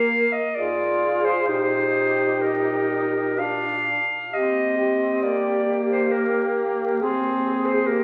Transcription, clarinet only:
0.00 0.34 F5 medium
0.32 0.57 D#5 soft
0.56 1.26 D5 medium
1.25 1.47 C5 medium
1.48 2.43 C5 medium
2.41 3.41 A#4 soft
3.39 4.35 F5 medium
4.33 5.22 D#5 soft
5.22 5.74 D5 soft
5.91 6.13 C5 soft
6.12 6.73 A#4 soft
7.00 7.67 G#4 soft
7.66 7.88 C5 soft
7.86 8.04 A#4 medium

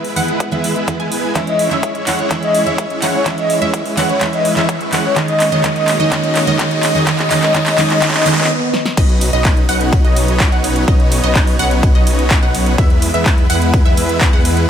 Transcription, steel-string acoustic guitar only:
0.16 0.27 E3 medium
0.16 0.27 G#3 medium
0.16 0.28 B3 medium
0.16 0.28 E4 medium
0.51 0.70 E3 loud
0.51 0.70 G#3 medium
0.51 0.70 B3 medium
0.51 0.70 E4 loud
0.87 1.05 E3 medium
0.87 1.06 G#3 medium
0.87 1.06 B3 medium
0.87 1.06 E4 loud
1.35 1.68 E3 medium
1.35 1.68 G#3 medium
1.35 1.68 C#4 medium
1.35 1.69 E4 loud
1.71 1.89 E3 medium
1.71 1.89 G#3 medium
1.71 1.89 C#4 medium
1.71 1.89 E4 medium
2.06 2.18 E3 medium
2.06 2.18 G#3 medium
2.06 2.18 C#4 medium
2.06 2.18 E4 medium
2.30 2.63 E3 medium
2.30 2.63 G#3 medium
2.30 2.64 C#4 medium
2.30 2.64 E4 loud
2.66 2.84 E3 medium
2.66 2.84 G#3 medium
2.66 2.84 C#4 medium
2.66 2.85 E4 medium
3.02 3.13 E3 medium
3.02 3.13 G#3 medium
3.02 3.13 C#4 medium
3.02 3.14 E4 medium
3.25 3.59 E3 medium
3.25 3.59 G#3 medium
3.25 3.59 C#4 medium
3.25 3.59 E4 medium
3.61 3.79 E3 medium
3.61 3.79 G#3 medium
3.61 3.80 C#4 medium
3.61 3.80 E4 medium
3.97 4.08 E3 medium
3.97 4.08 G#3 medium
3.97 4.09 C#4 medium
3.97 4.09 E4 medium
4.21 4.54 E3 medium
4.21 4.54 G#3 medium
4.21 4.54 C#4 medium
4.21 4.54 E4 loud
4.56 4.74 E3 medium
4.56 4.75 G#3 medium
4.56 4.75 C#4 medium
4.56 4.75 E4 medium
4.92 5.03 E3 medium
4.92 5.04 G#3 medium
4.92 5.04 C#4 medium
4.92 5.04 E4 medium
5.16 5.49 D#3 medium
5.16 5.49 G#3 medium
5.16 5.49 C#4 medium
5.16 5.50 D#4 loud
5.51 5.62 D#3 medium
5.51 5.62 G#3 medium
5.51 5.62 C#4 medium
5.51 5.62 D#4 medium
5.63 5.97 D#3 loud
5.63 5.97 G#3 medium
5.63 5.97 C#4 medium
5.63 5.97 D#4 loud
5.99 6.09 D#3 medium
5.99 6.10 G#3 medium
5.99 6.10 C#4 medium
5.99 6.10 D#4 medium
6.11 6.44 D#3 loud
6.11 6.44 G#3 medium
6.11 6.45 C#4 medium
6.11 6.45 D#4 loud
6.47 6.57 D#3 medium
6.47 6.57 G#3 medium
6.47 6.57 C#4 medium
6.47 6.58 D#4 medium
6.59 6.92 D#3 medium
6.59 6.92 G#3 medium
6.59 6.92 C#4 medium
6.59 6.92 D#4 loud
6.94 7.05 D#3 medium
6.94 7.05 G#3 medium
6.94 7.05 C#4 medium
6.94 7.05 D#4 loud
7.06 7.29 D#3 loud
7.06 7.29 G#3 medium
7.06 7.29 C#4 medium
7.06 7.29 D#4 loud
7.30 7.52 D#3 medium
7.30 7.53 G#3 medium
7.30 7.53 C#4 medium
7.30 7.53 D#4 loud
7.54 7.76 D#3 medium
7.54 7.76 G#3 medium
7.54 7.77 C#4 medium
7.54 7.77 D#4 loud
7.78 8.00 D#3 loud
7.78 8.00 G#3 medium
7.78 8.00 C#4 medium
7.78 8.01 D#4 loud
8.01 8.24 D#3 loud
8.01 8.24 G#3 medium
8.01 8.24 C#4 medium
8.01 8.24 D#4 loud
8.25 8.48 D#3 loud
8.25 8.48 G#3 medium
8.25 8.48 C#4 medium
8.25 8.48 D#4 loud

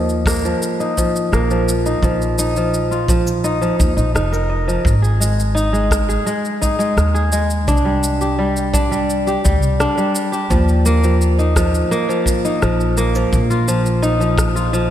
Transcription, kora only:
0.00 0.44 F3 medium
0.00 0.26 A#3 medium
0.00 0.80 D#4 medium
0.26 1.32 A#3 medium
0.45 0.96 F3 medium
0.80 1.86 D#4 medium
0.98 1.50 F3 medium
1.33 3.26 A#3 medium
1.51 2.03 F3 medium
1.86 2.38 D#4 medium
2.04 2.56 F3 medium
2.39 3.44 D#4 medium
2.57 3.08 F3 medium
2.91 4.42 F4 medium
3.09 3.60 F3 medium
3.44 3.79 D#4 medium
3.61 4.66 F3 medium
3.79 3.96 D#4 medium
3.97 4.14 D#4 medium
4.15 5.54 D#4 medium
4.32 5.60 A#4 medium
4.50 5.57 D#5 medium
4.68 4.91 F3 medium
5.02 6.08 G#4 medium
5.20 5.72 G#3 medium
5.55 6.61 D#4 medium
5.73 6.25 G#3 medium
6.09 7.14 G#4 medium
6.26 6.77 G#3 medium
6.61 7.74 D#4 medium
6.79 7.31 G#3 medium
7.14 7.91 G#4 medium
7.33 7.73 G#3 medium
7.68 8.73 D4 medium
7.85 8.37 G3 medium
8.21 9.27 G4 medium
8.39 8.90 G3 medium
8.73 9.80 D4 medium
8.91 9.43 G3 medium
9.27 10.32 G4 medium
9.44 9.96 G3 medium
9.80 11.45 D4 loud
9.97 10.55 G3 medium
10.32 11.73 G4 medium
10.50 11.03 F3 medium
10.86 11.91 A#3 loud
11.04 11.55 F3 medium
11.39 12.44 D#4 medium
11.56 12.08 F3 medium
11.91 12.97 A#3 loud
12.09 12.61 F3 medium
12.45 14.02 D#4 medium
12.62 13.14 F3 medium
12.98 14.90 A#3 loud
13.16 13.38 F3 medium
13.50 14.55 F4 medium
13.68 14.19 F3 medium
14.02 14.90 D#4 loud
14.20 14.72 F3 medium
14.55 14.90 F4 medium
14.73 14.90 F3 medium

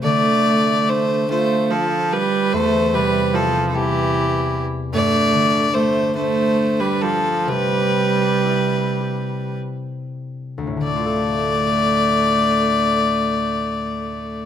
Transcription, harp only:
0.00 2.58 D3 medium
0.00 0.99 E4 medium
0.46 3.79 A3 soft
0.89 3.68 D4 medium
1.31 2.59 F4 medium
2.53 4.98 E2 medium
2.94 4.98 C3 medium
3.33 5.94 E4 medium
3.74 4.98 G3 medium
4.92 7.51 G2 medium
5.33 7.51 D3 medium
5.74 9.07 A3 medium
6.15 8.95 D4 medium
7.46 10.86 C3 medium
7.94 10.86 G3 soft
8.45 11.02 E4 medium
9.00 11.36 G4 medium
10.58 14.46 D2 soft
10.67 14.46 A2 soft
10.77 14.46 D3 soft
10.87 14.46 A3 soft
10.96 14.46 F4 soft
11.06 14.46 A4 medium

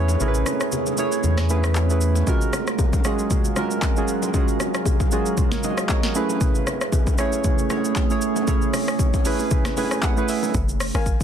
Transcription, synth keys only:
0.00 0.20 A3 medium
0.00 0.21 C#4 medium
0.00 0.21 E4 medium
0.00 0.21 G#4 medium
0.00 0.28 B4 medium
0.00 0.99 C#5 loud
0.20 0.83 A3 medium
0.20 0.84 C#4 medium
0.20 0.84 E4 medium
0.20 0.84 G#4 medium
0.20 0.28 A#4 medium
0.28 0.87 B4 medium
0.98 1.40 A3 medium
0.98 1.40 C#4 medium
0.98 1.41 E4 medium
0.98 1.41 G#4 medium
0.98 1.41 C#5 medium
1.50 1.81 A3 medium
1.50 1.81 C#4 medium
1.50 1.81 E4 medium
1.50 1.82 G#4 medium
1.50 1.82 B4 loud
1.90 2.20 A3 medium
1.90 2.20 C#4 medium
1.90 2.21 E4 medium
1.90 2.21 G#4 medium
1.90 2.21 B4 medium
2.27 2.90 G#3 medium
2.27 2.91 C#4 medium
2.27 2.91 F4 medium
2.27 2.91 F#4 medium
2.27 2.91 A#4 medium
3.05 3.47 G#3 medium
3.05 3.47 C#4 medium
3.05 3.48 F4 medium
3.05 3.48 F#4 medium
3.05 3.48 G#4 medium
3.57 3.88 G#3 medium
3.57 3.88 C#4 medium
3.57 3.88 F4 medium
3.57 3.89 F#4 medium
3.57 3.89 A#4 loud
3.97 4.27 G#3 medium
3.97 4.27 C#4 medium
3.97 4.28 F4 medium
3.97 4.28 F#4 medium
3.97 4.28 G#4 medium
4.34 4.97 G#3 medium
4.34 4.97 C#4 medium
4.34 4.98 F4 medium
4.34 4.98 F#4 medium
4.34 4.98 G#4 medium
5.12 5.54 G#3 medium
5.12 5.54 C#4 medium
5.12 5.38 F4 medium
5.12 5.38 F#4 medium
5.12 5.38 G#4 medium
5.53 5.64 A#4 medium
5.53 5.63 C#5 medium
5.64 5.88 D#5 medium
5.90 6.03 A#4 medium
5.90 6.03 C#5 medium
6.04 6.29 F#4 medium
6.04 6.28 A#4 medium
6.15 6.98 A3 medium
6.15 6.99 C#4 medium
6.15 6.99 E4 medium
6.15 6.99 G#4 medium
6.15 6.99 B4 loud
7.19 7.61 A3 medium
7.19 7.61 C#4 medium
7.19 7.61 E4 medium
7.19 7.61 G#4 medium
7.19 7.62 C#5 medium
7.70 8.02 A3 medium
7.70 8.02 C#4 medium
7.70 8.02 E4 medium
7.70 8.02 G#4 medium
7.70 8.02 C#5 medium
8.10 8.41 A3 medium
8.10 8.41 C#4 medium
8.10 8.41 E4 medium
8.10 8.41 G#4 medium
8.10 8.41 C#5 medium
8.48 9.11 A3 medium
8.48 9.11 C#4 medium
8.48 9.11 E4 medium
8.48 9.11 G#4 medium
8.48 9.12 C#5 medium
9.25 9.68 A3 medium
9.25 9.68 C#4 medium
9.25 9.68 E4 medium
9.25 9.68 G#4 medium
9.25 9.68 B4 medium
9.77 10.08 A3 medium
9.77 10.09 C#4 medium
9.77 10.09 E4 medium
9.77 10.09 G#4 medium
9.77 10.09 B4 medium
9.77 10.01 G#5 medium
10.03 10.27 F#5 medium
10.17 10.47 A3 medium
10.17 10.48 C#4 medium
10.17 10.48 E4 medium
10.17 10.48 G#4 medium
10.17 10.48 B4 medium
10.29 10.53 E5 medium

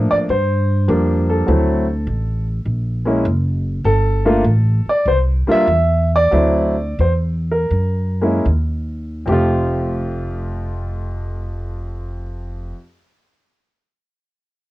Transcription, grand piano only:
0.00 0.25 F3 medium
0.00 0.25 A3 medium
0.00 0.26 A#3 medium
0.00 0.26 D4 medium
0.00 0.13 A4 medium
0.11 0.16 D5 medium
0.30 1.33 C5 medium
0.88 1.48 F3 medium
0.88 1.48 G3 soft
0.88 1.48 A#3 soft
0.88 1.49 D4 medium
1.30 2.44 A4 medium
1.47 1.84 F#3 medium
1.47 1.85 A3 medium
1.47 1.85 C4 medium
1.47 1.85 E4 medium
3.05 3.23 G#3 medium
3.05 3.23 A#3 medium
3.05 3.24 C#4 medium
3.05 3.24 E4 medium
3.85 4.89 A4 medium
4.25 4.43 A3 medium
4.25 4.43 A#3 medium
4.25 4.43 D4 medium
4.25 4.43 F4 medium
4.90 5.08 D5 medium
5.08 5.17 C5 medium
5.47 5.65 G3 medium
5.47 5.66 A#3 medium
5.47 5.66 D4 medium
5.47 5.66 F4 medium
5.51 6.09 E5 medium
6.16 7.04 D5 loud
6.31 6.73 F#3 medium
6.31 6.74 A3 soft
6.31 6.74 C4 medium
6.31 6.74 E4 medium
7.01 7.11 C5 medium
7.52 8.44 A#4 medium
8.22 8.44 G#3 medium
8.22 8.44 A#3 medium
8.22 8.44 C#4 soft
8.22 8.45 E4 medium
9.26 12.73 F2 medium
9.26 12.75 F3 medium
9.26 12.76 A3 soft
9.26 12.76 G4 medium
9.32 12.75 F4 medium

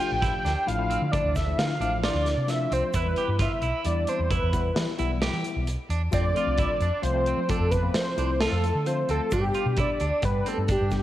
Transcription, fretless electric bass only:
0.12 0.30 A1 medium
0.45 0.54 D2 medium
0.68 0.96 A1 medium
1.02 1.21 D3 medium
1.24 1.53 D2 medium
1.58 1.77 D3 medium
1.80 2.09 A1 medium
2.14 2.33 D2 medium
2.37 2.66 C3 medium
2.71 2.81 C2 medium
2.94 3.13 E2 medium
3.28 3.47 G2 medium
3.62 3.72 B1 medium
3.85 4.04 E2 medium
4.19 4.38 E2 medium
4.42 4.71 E2 medium
4.76 4.86 E3 medium
4.99 5.28 B1 medium
5.33 5.43 E3 medium
5.56 5.75 B1 medium
5.89 6.09 E2 medium
6.13 6.32 F2 medium
6.46 6.66 C2 medium
6.80 6.90 F2 medium
7.03 7.32 C2 loud
7.37 7.57 F3 medium
7.59 7.88 F2 medium
7.95 8.14 F3 medium
8.17 8.46 C2 medium
8.52 8.71 F2 medium
8.75 9.03 D3 medium
9.09 9.18 D2 medium
9.32 9.51 G2 medium
9.66 9.85 B2 medium
10.01 10.10 D2 medium
10.23 10.42 G2 medium
10.58 10.77 G2 medium
10.81 11.03 G2 medium

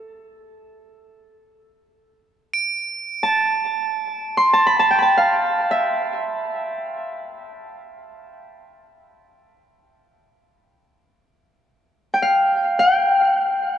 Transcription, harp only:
0.00 1.30 A4 medium
3.23 4.53 A5 medium
4.37 4.73 C6 medium
4.53 4.79 A5 medium
4.67 4.98 B5 medium
4.79 5.02 A5 medium
4.91 6.46 G5 medium
4.98 6.47 A5 medium
4.98 6.34 B5 medium
5.17 5.77 F5 medium
5.71 9.26 E5 medium
12.14 12.79 G5 medium
12.22 13.78 F5 medium
12.79 13.78 G5 medium

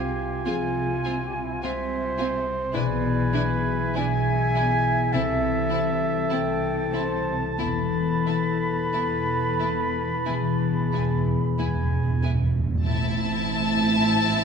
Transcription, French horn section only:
0.45 0.92 F3 medium
0.45 0.93 G#4 medium
2.73 3.92 E3 medium
2.73 3.91 G#4 medium
3.96 5.10 E3 medium
3.96 5.10 G#4 medium
5.13 7.55 E3 medium
5.13 7.57 A4 medium
7.58 10.10 E3 medium
7.58 10.10 A4 medium
10.27 12.48 E3 medium
10.27 12.52 G#4 medium

